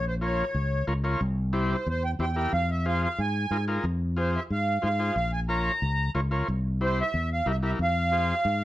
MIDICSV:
0, 0, Header, 1, 4, 480
1, 0, Start_track
1, 0, Key_signature, -4, "minor"
1, 0, Tempo, 329308
1, 1762, Time_signature, 4, 2, 24, 8
1, 12594, End_track
2, 0, Start_track
2, 0, Title_t, "Accordion"
2, 0, Program_c, 0, 21
2, 109, Note_on_c, 0, 72, 73
2, 211, Note_off_c, 0, 72, 0
2, 360, Note_on_c, 0, 73, 74
2, 1243, Note_off_c, 0, 73, 0
2, 2494, Note_on_c, 0, 72, 68
2, 2733, Note_off_c, 0, 72, 0
2, 2755, Note_on_c, 0, 72, 83
2, 2964, Note_off_c, 0, 72, 0
2, 2976, Note_on_c, 0, 79, 79
2, 3081, Note_off_c, 0, 79, 0
2, 3225, Note_on_c, 0, 79, 85
2, 3432, Note_off_c, 0, 79, 0
2, 3454, Note_on_c, 0, 79, 84
2, 3673, Note_off_c, 0, 79, 0
2, 3688, Note_on_c, 0, 77, 99
2, 3933, Note_off_c, 0, 77, 0
2, 3944, Note_on_c, 0, 76, 84
2, 4158, Note_off_c, 0, 76, 0
2, 4185, Note_on_c, 0, 77, 87
2, 4405, Note_off_c, 0, 77, 0
2, 4426, Note_on_c, 0, 77, 92
2, 4658, Note_on_c, 0, 80, 93
2, 4662, Note_off_c, 0, 77, 0
2, 5321, Note_off_c, 0, 80, 0
2, 6111, Note_on_c, 0, 72, 69
2, 6343, Note_off_c, 0, 72, 0
2, 6354, Note_on_c, 0, 76, 79
2, 6455, Note_off_c, 0, 76, 0
2, 6591, Note_on_c, 0, 77, 92
2, 7032, Note_off_c, 0, 77, 0
2, 7054, Note_on_c, 0, 77, 88
2, 7494, Note_off_c, 0, 77, 0
2, 7521, Note_on_c, 0, 77, 93
2, 7744, Note_off_c, 0, 77, 0
2, 7763, Note_on_c, 0, 80, 81
2, 7871, Note_off_c, 0, 80, 0
2, 7999, Note_on_c, 0, 82, 93
2, 8901, Note_off_c, 0, 82, 0
2, 9962, Note_on_c, 0, 72, 81
2, 10187, Note_off_c, 0, 72, 0
2, 10214, Note_on_c, 0, 76, 93
2, 10635, Note_off_c, 0, 76, 0
2, 10676, Note_on_c, 0, 77, 83
2, 10882, Note_off_c, 0, 77, 0
2, 10931, Note_on_c, 0, 76, 87
2, 11027, Note_off_c, 0, 76, 0
2, 11139, Note_on_c, 0, 76, 83
2, 11242, Note_off_c, 0, 76, 0
2, 11400, Note_on_c, 0, 77, 99
2, 12594, Note_off_c, 0, 77, 0
2, 12594, End_track
3, 0, Start_track
3, 0, Title_t, "Transistor combo organ"
3, 0, Program_c, 1, 18
3, 311, Note_on_c, 1, 65, 66
3, 320, Note_on_c, 1, 70, 59
3, 325, Note_on_c, 1, 73, 71
3, 652, Note_off_c, 1, 65, 0
3, 657, Note_off_c, 1, 70, 0
3, 659, Note_off_c, 1, 73, 0
3, 1272, Note_on_c, 1, 65, 77
3, 1278, Note_on_c, 1, 70, 74
3, 1289, Note_on_c, 1, 73, 90
3, 1361, Note_off_c, 1, 65, 0
3, 1364, Note_off_c, 1, 70, 0
3, 1370, Note_off_c, 1, 73, 0
3, 1512, Note_on_c, 1, 65, 71
3, 1517, Note_on_c, 1, 70, 68
3, 1525, Note_on_c, 1, 73, 77
3, 1758, Note_off_c, 1, 65, 0
3, 1760, Note_off_c, 1, 70, 0
3, 1764, Note_off_c, 1, 73, 0
3, 2228, Note_on_c, 1, 64, 76
3, 2231, Note_on_c, 1, 67, 74
3, 2235, Note_on_c, 1, 72, 91
3, 2572, Note_off_c, 1, 64, 0
3, 2573, Note_off_c, 1, 67, 0
3, 2575, Note_off_c, 1, 72, 0
3, 3201, Note_on_c, 1, 64, 63
3, 3204, Note_on_c, 1, 67, 62
3, 3209, Note_on_c, 1, 72, 73
3, 3287, Note_off_c, 1, 64, 0
3, 3288, Note_off_c, 1, 67, 0
3, 3290, Note_off_c, 1, 72, 0
3, 3438, Note_on_c, 1, 64, 62
3, 3445, Note_on_c, 1, 70, 67
3, 3446, Note_on_c, 1, 67, 49
3, 3681, Note_off_c, 1, 64, 0
3, 3685, Note_off_c, 1, 67, 0
3, 3685, Note_off_c, 1, 70, 0
3, 4163, Note_on_c, 1, 65, 67
3, 4165, Note_on_c, 1, 68, 56
3, 4166, Note_on_c, 1, 72, 75
3, 4499, Note_off_c, 1, 65, 0
3, 4500, Note_off_c, 1, 68, 0
3, 4501, Note_off_c, 1, 72, 0
3, 5121, Note_on_c, 1, 65, 69
3, 5127, Note_on_c, 1, 68, 62
3, 5129, Note_on_c, 1, 70, 76
3, 5206, Note_off_c, 1, 65, 0
3, 5209, Note_off_c, 1, 68, 0
3, 5210, Note_off_c, 1, 70, 0
3, 5359, Note_on_c, 1, 65, 73
3, 5364, Note_on_c, 1, 68, 63
3, 5368, Note_on_c, 1, 70, 81
3, 5613, Note_off_c, 1, 65, 0
3, 5615, Note_off_c, 1, 68, 0
3, 5618, Note_off_c, 1, 70, 0
3, 6071, Note_on_c, 1, 65, 71
3, 6083, Note_on_c, 1, 68, 60
3, 6087, Note_on_c, 1, 72, 72
3, 6413, Note_off_c, 1, 65, 0
3, 6419, Note_off_c, 1, 68, 0
3, 6421, Note_off_c, 1, 72, 0
3, 7025, Note_on_c, 1, 65, 68
3, 7035, Note_on_c, 1, 68, 62
3, 7035, Note_on_c, 1, 72, 79
3, 7117, Note_off_c, 1, 65, 0
3, 7122, Note_off_c, 1, 68, 0
3, 7122, Note_off_c, 1, 72, 0
3, 7276, Note_on_c, 1, 65, 60
3, 7281, Note_on_c, 1, 68, 51
3, 7289, Note_on_c, 1, 72, 64
3, 7518, Note_off_c, 1, 65, 0
3, 7521, Note_off_c, 1, 68, 0
3, 7525, Note_off_c, 1, 72, 0
3, 7997, Note_on_c, 1, 65, 65
3, 8002, Note_on_c, 1, 70, 62
3, 8013, Note_on_c, 1, 73, 78
3, 8335, Note_off_c, 1, 65, 0
3, 8337, Note_off_c, 1, 70, 0
3, 8343, Note_off_c, 1, 73, 0
3, 8959, Note_on_c, 1, 65, 86
3, 8964, Note_on_c, 1, 70, 75
3, 8965, Note_on_c, 1, 73, 91
3, 9044, Note_off_c, 1, 65, 0
3, 9046, Note_off_c, 1, 70, 0
3, 9047, Note_off_c, 1, 73, 0
3, 9197, Note_on_c, 1, 65, 71
3, 9208, Note_on_c, 1, 70, 67
3, 9208, Note_on_c, 1, 73, 71
3, 9438, Note_off_c, 1, 65, 0
3, 9444, Note_off_c, 1, 70, 0
3, 9444, Note_off_c, 1, 73, 0
3, 9925, Note_on_c, 1, 67, 61
3, 9926, Note_on_c, 1, 64, 68
3, 9933, Note_on_c, 1, 72, 72
3, 10258, Note_off_c, 1, 64, 0
3, 10258, Note_off_c, 1, 67, 0
3, 10262, Note_off_c, 1, 72, 0
3, 10873, Note_on_c, 1, 64, 69
3, 10889, Note_on_c, 1, 67, 61
3, 10889, Note_on_c, 1, 70, 80
3, 10960, Note_off_c, 1, 64, 0
3, 10968, Note_off_c, 1, 67, 0
3, 10968, Note_off_c, 1, 70, 0
3, 11113, Note_on_c, 1, 64, 55
3, 11118, Note_on_c, 1, 67, 54
3, 11124, Note_on_c, 1, 70, 63
3, 11356, Note_off_c, 1, 64, 0
3, 11359, Note_off_c, 1, 67, 0
3, 11361, Note_off_c, 1, 70, 0
3, 11830, Note_on_c, 1, 65, 70
3, 11843, Note_on_c, 1, 68, 64
3, 11843, Note_on_c, 1, 72, 70
3, 12170, Note_off_c, 1, 65, 0
3, 12177, Note_off_c, 1, 68, 0
3, 12177, Note_off_c, 1, 72, 0
3, 12594, End_track
4, 0, Start_track
4, 0, Title_t, "Fingered electric bass"
4, 0, Program_c, 2, 33
4, 0, Note_on_c, 2, 34, 94
4, 607, Note_off_c, 2, 34, 0
4, 793, Note_on_c, 2, 37, 88
4, 1181, Note_off_c, 2, 37, 0
4, 1275, Note_on_c, 2, 37, 87
4, 1662, Note_off_c, 2, 37, 0
4, 1760, Note_on_c, 2, 36, 97
4, 2530, Note_off_c, 2, 36, 0
4, 2717, Note_on_c, 2, 40, 87
4, 3104, Note_off_c, 2, 40, 0
4, 3191, Note_on_c, 2, 40, 85
4, 3580, Note_off_c, 2, 40, 0
4, 3682, Note_on_c, 2, 41, 92
4, 4451, Note_off_c, 2, 41, 0
4, 4641, Note_on_c, 2, 44, 87
4, 5026, Note_off_c, 2, 44, 0
4, 5111, Note_on_c, 2, 44, 78
4, 5500, Note_off_c, 2, 44, 0
4, 5592, Note_on_c, 2, 41, 91
4, 6364, Note_off_c, 2, 41, 0
4, 6565, Note_on_c, 2, 44, 80
4, 6948, Note_off_c, 2, 44, 0
4, 7045, Note_on_c, 2, 44, 85
4, 7428, Note_off_c, 2, 44, 0
4, 7517, Note_on_c, 2, 34, 91
4, 8286, Note_off_c, 2, 34, 0
4, 8482, Note_on_c, 2, 37, 85
4, 8865, Note_off_c, 2, 37, 0
4, 8959, Note_on_c, 2, 37, 85
4, 9343, Note_off_c, 2, 37, 0
4, 9449, Note_on_c, 2, 36, 95
4, 10213, Note_off_c, 2, 36, 0
4, 10404, Note_on_c, 2, 40, 85
4, 10786, Note_off_c, 2, 40, 0
4, 10874, Note_on_c, 2, 36, 85
4, 11260, Note_off_c, 2, 36, 0
4, 11355, Note_on_c, 2, 41, 90
4, 12124, Note_off_c, 2, 41, 0
4, 12315, Note_on_c, 2, 44, 85
4, 12594, Note_off_c, 2, 44, 0
4, 12594, End_track
0, 0, End_of_file